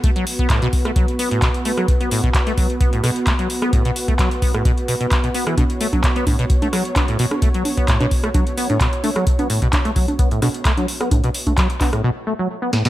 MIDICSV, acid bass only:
0, 0, Header, 1, 2, 480
1, 0, Start_track
1, 0, Tempo, 461538
1, 38, Time_signature, 4, 2, 24, 8
1, 13408, End_track
2, 0, Start_track
2, 0, Title_t, "Acid bass"
2, 0, Program_c, 0, 38
2, 39, Note_on_c, 0, 57, 83
2, 109, Note_off_c, 0, 57, 0
2, 166, Note_on_c, 0, 54, 73
2, 259, Note_off_c, 0, 54, 0
2, 407, Note_on_c, 0, 59, 76
2, 499, Note_off_c, 0, 59, 0
2, 519, Note_on_c, 0, 45, 84
2, 624, Note_off_c, 0, 45, 0
2, 646, Note_on_c, 0, 47, 98
2, 708, Note_off_c, 0, 47, 0
2, 886, Note_on_c, 0, 57, 73
2, 948, Note_off_c, 0, 57, 0
2, 999, Note_on_c, 0, 54, 82
2, 1104, Note_off_c, 0, 54, 0
2, 1239, Note_on_c, 0, 59, 70
2, 1344, Note_off_c, 0, 59, 0
2, 1367, Note_on_c, 0, 45, 79
2, 1459, Note_off_c, 0, 45, 0
2, 1479, Note_on_c, 0, 47, 99
2, 1549, Note_off_c, 0, 47, 0
2, 1719, Note_on_c, 0, 57, 77
2, 1789, Note_off_c, 0, 57, 0
2, 1846, Note_on_c, 0, 54, 76
2, 1939, Note_off_c, 0, 54, 0
2, 2086, Note_on_c, 0, 59, 71
2, 2179, Note_off_c, 0, 59, 0
2, 2198, Note_on_c, 0, 45, 75
2, 2303, Note_off_c, 0, 45, 0
2, 2326, Note_on_c, 0, 47, 100
2, 2388, Note_off_c, 0, 47, 0
2, 2566, Note_on_c, 0, 57, 78
2, 2628, Note_off_c, 0, 57, 0
2, 2679, Note_on_c, 0, 54, 76
2, 2784, Note_off_c, 0, 54, 0
2, 2918, Note_on_c, 0, 59, 83
2, 3023, Note_off_c, 0, 59, 0
2, 3045, Note_on_c, 0, 45, 77
2, 3139, Note_off_c, 0, 45, 0
2, 3158, Note_on_c, 0, 47, 97
2, 3228, Note_off_c, 0, 47, 0
2, 3398, Note_on_c, 0, 57, 80
2, 3468, Note_off_c, 0, 57, 0
2, 3525, Note_on_c, 0, 54, 77
2, 3619, Note_off_c, 0, 54, 0
2, 3766, Note_on_c, 0, 59, 78
2, 3859, Note_off_c, 0, 59, 0
2, 3878, Note_on_c, 0, 45, 85
2, 3983, Note_off_c, 0, 45, 0
2, 4005, Note_on_c, 0, 47, 97
2, 4068, Note_off_c, 0, 47, 0
2, 4246, Note_on_c, 0, 57, 77
2, 4308, Note_off_c, 0, 57, 0
2, 4358, Note_on_c, 0, 54, 83
2, 4463, Note_off_c, 0, 54, 0
2, 4598, Note_on_c, 0, 59, 77
2, 4703, Note_off_c, 0, 59, 0
2, 4726, Note_on_c, 0, 45, 72
2, 4819, Note_off_c, 0, 45, 0
2, 4838, Note_on_c, 0, 47, 97
2, 4908, Note_off_c, 0, 47, 0
2, 5078, Note_on_c, 0, 47, 71
2, 5149, Note_off_c, 0, 47, 0
2, 5206, Note_on_c, 0, 47, 76
2, 5268, Note_off_c, 0, 47, 0
2, 5445, Note_on_c, 0, 47, 75
2, 5508, Note_off_c, 0, 47, 0
2, 5558, Note_on_c, 0, 59, 76
2, 5664, Note_off_c, 0, 59, 0
2, 5685, Note_on_c, 0, 52, 76
2, 5779, Note_off_c, 0, 52, 0
2, 5798, Note_on_c, 0, 47, 99
2, 5869, Note_off_c, 0, 47, 0
2, 6038, Note_on_c, 0, 57, 75
2, 6108, Note_off_c, 0, 57, 0
2, 6166, Note_on_c, 0, 54, 75
2, 6259, Note_off_c, 0, 54, 0
2, 6406, Note_on_c, 0, 59, 74
2, 6499, Note_off_c, 0, 59, 0
2, 6519, Note_on_c, 0, 45, 78
2, 6624, Note_off_c, 0, 45, 0
2, 6646, Note_on_c, 0, 47, 97
2, 6708, Note_off_c, 0, 47, 0
2, 6886, Note_on_c, 0, 57, 75
2, 6948, Note_off_c, 0, 57, 0
2, 6999, Note_on_c, 0, 54, 74
2, 7104, Note_off_c, 0, 54, 0
2, 7238, Note_on_c, 0, 59, 83
2, 7344, Note_off_c, 0, 59, 0
2, 7366, Note_on_c, 0, 45, 76
2, 7459, Note_off_c, 0, 45, 0
2, 7479, Note_on_c, 0, 47, 99
2, 7549, Note_off_c, 0, 47, 0
2, 7719, Note_on_c, 0, 57, 84
2, 7789, Note_off_c, 0, 57, 0
2, 7846, Note_on_c, 0, 54, 74
2, 7939, Note_off_c, 0, 54, 0
2, 8086, Note_on_c, 0, 59, 77
2, 8179, Note_off_c, 0, 59, 0
2, 8198, Note_on_c, 0, 45, 86
2, 8303, Note_off_c, 0, 45, 0
2, 8326, Note_on_c, 0, 47, 101
2, 8388, Note_off_c, 0, 47, 0
2, 8566, Note_on_c, 0, 57, 77
2, 8628, Note_off_c, 0, 57, 0
2, 8679, Note_on_c, 0, 54, 81
2, 8784, Note_off_c, 0, 54, 0
2, 8918, Note_on_c, 0, 59, 72
2, 9023, Note_off_c, 0, 59, 0
2, 9046, Note_on_c, 0, 45, 78
2, 9139, Note_off_c, 0, 45, 0
2, 9398, Note_on_c, 0, 57, 76
2, 9469, Note_off_c, 0, 57, 0
2, 9525, Note_on_c, 0, 54, 79
2, 9619, Note_off_c, 0, 54, 0
2, 9766, Note_on_c, 0, 59, 75
2, 9859, Note_off_c, 0, 59, 0
2, 9878, Note_on_c, 0, 45, 77
2, 9984, Note_off_c, 0, 45, 0
2, 10005, Note_on_c, 0, 47, 100
2, 10068, Note_off_c, 0, 47, 0
2, 10246, Note_on_c, 0, 57, 76
2, 10308, Note_off_c, 0, 57, 0
2, 10358, Note_on_c, 0, 54, 78
2, 10464, Note_off_c, 0, 54, 0
2, 10599, Note_on_c, 0, 59, 81
2, 10704, Note_off_c, 0, 59, 0
2, 10726, Note_on_c, 0, 45, 78
2, 10819, Note_off_c, 0, 45, 0
2, 10839, Note_on_c, 0, 47, 96
2, 10909, Note_off_c, 0, 47, 0
2, 11079, Note_on_c, 0, 57, 83
2, 11149, Note_off_c, 0, 57, 0
2, 11206, Note_on_c, 0, 54, 76
2, 11299, Note_off_c, 0, 54, 0
2, 11446, Note_on_c, 0, 59, 80
2, 11539, Note_off_c, 0, 59, 0
2, 11559, Note_on_c, 0, 45, 84
2, 11664, Note_off_c, 0, 45, 0
2, 11687, Note_on_c, 0, 47, 99
2, 11748, Note_off_c, 0, 47, 0
2, 11926, Note_on_c, 0, 57, 78
2, 11988, Note_off_c, 0, 57, 0
2, 12039, Note_on_c, 0, 54, 88
2, 12144, Note_off_c, 0, 54, 0
2, 12279, Note_on_c, 0, 59, 77
2, 12384, Note_off_c, 0, 59, 0
2, 12406, Note_on_c, 0, 45, 76
2, 12499, Note_off_c, 0, 45, 0
2, 12519, Note_on_c, 0, 47, 104
2, 12589, Note_off_c, 0, 47, 0
2, 12759, Note_on_c, 0, 57, 74
2, 12829, Note_off_c, 0, 57, 0
2, 12887, Note_on_c, 0, 54, 76
2, 12979, Note_off_c, 0, 54, 0
2, 13126, Note_on_c, 0, 59, 78
2, 13219, Note_off_c, 0, 59, 0
2, 13239, Note_on_c, 0, 45, 76
2, 13344, Note_off_c, 0, 45, 0
2, 13367, Note_on_c, 0, 47, 103
2, 13408, Note_off_c, 0, 47, 0
2, 13408, End_track
0, 0, End_of_file